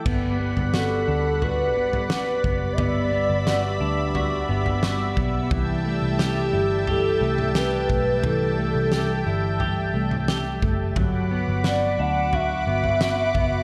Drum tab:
CC |x---------------|----------------|----------------|----------------|
SD |----o-------o---|----o-------o---|----o-------o---|----o-------o---|
FT |o--o----o--o--o-|o-------o--o--o-|o-------o--o--o-|o-------o--o--o-|
BD |o-------------o-|--------------o-|o-------------o-|--------------o-|

CC |----------------|
SD |----o-------o---|
FT |o-------o--o--o-|
BD |o-------------o-|